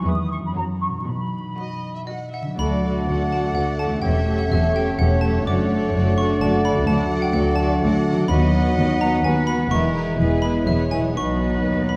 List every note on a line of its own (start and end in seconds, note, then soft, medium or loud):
0.00 0.49 E3 soft
0.00 0.52 G#3 soft
0.00 0.54 E4 soft
0.00 0.56 B4 soft
0.07 0.46 E2 medium
0.07 0.44 B3 medium
0.07 0.44 G#4 soft
0.07 0.44 E5 medium
0.07 0.33 D#6 medium
0.31 0.37 C#6 medium
0.38 1.00 F#2 soft
0.43 0.91 F#3 soft
0.43 0.51 B5 medium
0.47 1.04 C#4 soft
0.52 1.00 F#4 soft
0.52 0.93 F#4 soft
0.56 0.96 F#2 medium
0.56 0.94 F#3 soft
0.56 0.94 C#5 soft
0.56 0.63 A#5 medium
0.81 0.87 C#6 medium
0.88 2.52 B2 soft
0.93 2.45 F#3 soft
0.97 2.56 D#4 soft
0.97 1.06 C#6 soft
1.02 2.54 F#4 soft
1.07 1.47 B2 soft
1.07 2.08 B5 medium
1.57 1.95 F#3 soft
1.57 1.95 F#4 soft
1.57 1.93 D#5 soft
1.95 2.00 E5 soft
2.07 2.46 F#3 soft
2.07 2.46 F#4 soft
2.07 2.31 D#5 soft
2.07 2.33 F#5 soft
2.32 2.58 E5 soft
2.32 2.58 F#5 soft
2.41 3.95 D3 soft
2.46 3.98 F#3 soft
2.50 4.00 D4 soft
2.55 5.42 A3 soft
2.55 4.02 F#4 soft
2.55 3.98 F#4 soft
2.55 2.82 A4 soft
2.55 3.04 D5 medium
2.55 3.98 D5 soft
2.55 3.98 F#5 soft
2.59 3.00 D2 medium
2.59 2.84 A3 soft
2.59 5.42 A3 soft
2.59 2.83 F#4 soft
2.59 2.83 D5 soft
2.59 3.27 B5 medium
2.83 3.07 A3 soft
2.83 3.07 F#4 soft
2.83 3.07 A4 soft
2.83 3.07 D5 soft
3.07 3.47 D2 medium
3.07 3.31 A3 soft
3.07 3.31 F#4 soft
3.07 3.29 A4 soft
3.07 3.29 D5 soft
3.07 4.00 F#5 medium
3.30 3.55 A3 soft
3.30 3.55 F#4 soft
3.30 3.53 A4 soft
3.30 3.53 D5 soft
3.30 3.54 A5 medium
3.55 3.95 D2 medium
3.55 3.77 A3 soft
3.55 3.77 F#4 soft
3.55 3.78 A4 soft
3.55 3.78 D5 soft
3.55 3.77 F#5 medium
3.78 4.01 A3 soft
3.78 4.02 F#4 soft
3.78 4.02 A4 soft
3.78 4.02 D5 soft
3.78 4.01 A5 medium
3.85 5.39 E2 soft
3.89 5.31 A3 soft
3.94 5.43 C#4 soft
3.98 5.43 C#4 soft
3.98 5.46 G4 soft
3.98 4.25 G4 soft
3.98 5.43 C#5 soft
3.98 4.35 G5 medium
4.02 4.42 E1 medium
4.02 4.42 E2 medium
4.02 4.25 A3 soft
4.02 4.27 A4 soft
4.02 4.27 C#5 soft
4.02 5.43 E5 medium
4.02 4.96 E5 medium
4.26 4.48 A3 soft
4.26 4.48 G4 soft
4.26 4.51 A4 soft
4.26 4.51 C#5 soft
4.39 4.49 F#5 medium
4.49 4.90 E1 medium
4.49 4.90 E2 medium
4.49 4.72 A3 soft
4.49 4.72 G4 soft
4.49 4.75 A4 soft
4.49 4.74 C#5 soft
4.49 4.73 E5 medium
4.73 4.96 A3 soft
4.73 4.95 G4 soft
4.73 4.98 A4 soft
4.73 4.97 G5 medium
4.77 4.99 C#5 soft
4.97 5.38 E1 medium
4.97 5.38 E2 medium
4.97 5.19 A3 soft
4.97 5.19 G4 soft
4.97 6.38 C#5 medium
4.97 5.20 F#5 medium
5.01 5.23 A4 soft
5.01 5.23 C#5 soft
5.20 5.45 A3 soft
5.20 5.45 G4 soft
5.20 5.44 A5 medium
5.25 6.81 F#2 medium
5.25 5.47 A4 soft
5.25 5.48 C#5 soft
5.33 6.73 A3 soft
5.37 6.78 D4 soft
5.41 6.84 A3 medium
5.41 8.25 D4 medium
5.41 6.83 F#4 soft
5.46 5.86 F#1 medium
5.46 5.86 F#2 medium
5.46 5.68 A3 medium
5.46 8.31 A3 medium
5.46 5.68 F#4 medium
5.46 5.71 A4 soft
5.46 8.25 D5 medium
5.46 5.71 D5 soft
5.46 7.99 F#5 medium
5.46 6.14 D6 medium
5.69 5.92 A3 soft
5.69 5.92 F#4 soft
5.69 5.94 A4 soft
5.69 5.94 D5 soft
5.93 6.34 F#1 medium
5.93 6.33 F#2 medium
5.93 6.15 A3 medium
5.93 6.15 F#4 soft
5.93 6.17 A4 soft
5.93 6.17 D5 soft
6.16 6.39 A3 soft
6.16 6.39 F#4 soft
6.16 6.41 A4 medium
6.16 6.41 D5 medium
6.16 6.39 C#6 medium
6.40 6.80 F#1 medium
6.40 6.80 F#2 medium
6.40 6.63 A3 medium
6.40 6.64 F#4 medium
6.40 6.64 A4 soft
6.40 6.64 D5 soft
6.40 6.88 D5 medium
6.40 6.63 A5 medium
6.64 6.87 A3 soft
6.64 6.87 F#4 medium
6.64 6.87 A4 soft
6.64 6.86 D5 soft
6.64 6.86 B5 medium
6.70 8.22 D3 medium
6.75 8.25 A3 soft
6.79 8.27 D4 soft
6.84 7.27 D2 medium
6.84 8.19 F#4 soft
6.84 7.10 D5 medium
6.84 7.20 A5 medium
6.88 8.27 F#3 medium
6.88 7.11 F#3 medium
6.88 7.11 F#4 medium
6.88 7.11 A4 soft
6.88 7.35 F#5 medium
7.12 7.34 F#3 medium
7.12 7.35 F#4 soft
7.12 7.33 A4 medium
7.12 7.33 D5 soft
7.22 7.34 G5 medium
7.33 7.75 D2 medium
7.33 7.58 F#3 medium
7.33 7.58 F#4 medium
7.33 7.58 A4 medium
7.33 7.58 D5 medium
7.33 7.83 D5 medium
7.33 7.56 F#5 medium
7.56 7.82 F#3 medium
7.56 7.82 F#4 medium
7.56 7.82 D5 medium
7.56 7.79 A5 medium
7.60 7.82 A4 medium
7.81 8.21 D2 medium
7.81 8.22 D2 medium
7.81 8.05 F#3 medium
7.81 8.04 F#4 medium
7.81 8.06 A4 soft
7.81 8.06 D5 medium
7.81 8.29 F#5 medium
8.06 8.29 F#3 soft
8.06 8.29 F#4 medium
8.06 8.30 A4 medium
8.06 8.30 D5 medium
8.11 9.64 D#3 medium
8.16 9.66 F#3 soft
8.20 9.69 F#4 soft
8.25 9.66 B4 soft
8.25 9.68 F#5 medium
8.25 8.96 B5 medium
8.29 8.69 D#2 medium
8.29 9.44 F#3 medium
8.29 9.54 F#3 medium
8.29 8.52 B3 medium
8.29 9.54 D#4 medium
8.29 8.53 F#4 medium
8.29 10.83 B4 medium
8.29 8.52 B4 soft
8.29 9.23 D#5 medium
8.53 8.76 B3 medium
8.53 8.77 F#4 medium
8.53 8.75 F#4 medium
8.53 8.76 B4 medium
8.76 9.16 D#2 medium
8.76 9.17 D#2 medium
8.76 9.00 B3 medium
8.76 9.00 F#4 medium
8.76 9.01 F#4 medium
8.76 9.01 B4 medium
9.01 9.23 B3 medium
9.01 9.23 F#4 medium
9.01 9.24 F#4 medium
9.01 9.24 B4 medium
9.01 9.23 A#5 medium
9.23 9.63 D#2 medium
9.23 9.64 D#2 medium
9.23 9.46 B3 medium
9.23 9.46 F#4 medium
9.23 9.48 F#4 soft
9.23 9.71 B4 medium
9.23 9.48 B4 medium
9.23 9.46 G#5 medium
9.47 9.69 B3 soft
9.47 9.70 F#4 soft
9.47 9.72 F#4 soft
9.47 9.70 B4 soft
9.47 9.69 B5 medium
9.53 11.09 E3 soft
9.58 11.11 G#3 soft
9.63 11.14 E4 soft
9.67 10.10 E1 medium
9.67 9.93 B3 medium
9.67 9.93 E4 medium
9.67 11.10 B4 soft
9.71 10.11 E2 medium
9.71 11.13 G#3 medium
9.71 11.13 E4 medium
9.71 9.93 G#4 soft
9.71 10.18 A#4 medium
9.71 9.93 B4 soft
9.71 11.16 E5 medium
9.71 10.38 C#6 medium
9.94 10.17 B3 soft
9.94 10.16 E4 soft
9.94 10.17 G#4 soft
9.94 10.17 B4 soft
10.18 10.59 E1 medium
10.18 10.59 E2 medium
10.18 10.41 B3 soft
10.18 10.41 E4 soft
10.18 10.41 G#4 soft
10.18 10.66 G#4 medium
10.18 10.41 B4 soft
10.42 10.64 B3 soft
10.42 10.64 E4 soft
10.42 10.66 G#4 medium
10.42 10.65 B4 soft
10.42 10.64 B5 medium
10.65 11.08 E1 medium
10.65 11.08 E2 medium
10.65 10.89 B3 soft
10.65 10.89 E4 soft
10.65 10.90 G#4 soft
10.65 10.90 B4 soft
10.65 11.15 C#5 medium
10.65 10.90 E5 medium
10.90 11.14 B3 soft
10.90 11.15 E4 soft
10.90 11.16 G#4 soft
10.90 11.15 B4 soft
10.90 11.14 G#5 medium
10.97 11.96 B2 soft
11.02 11.96 F#3 soft
11.06 11.96 D#4 soft
11.11 11.96 F#3 medium
11.11 11.96 D#4 medium
11.11 11.96 B4 soft
11.15 11.61 B1 soft
11.15 11.61 B2 soft
11.15 11.96 F#3 soft
11.15 11.96 B3 medium
11.15 11.96 F#4 soft
11.15 11.96 B4 soft
11.15 11.96 D#5 medium
11.15 11.85 C#6 medium
11.63 11.96 D#2 soft
11.89 11.96 B5 medium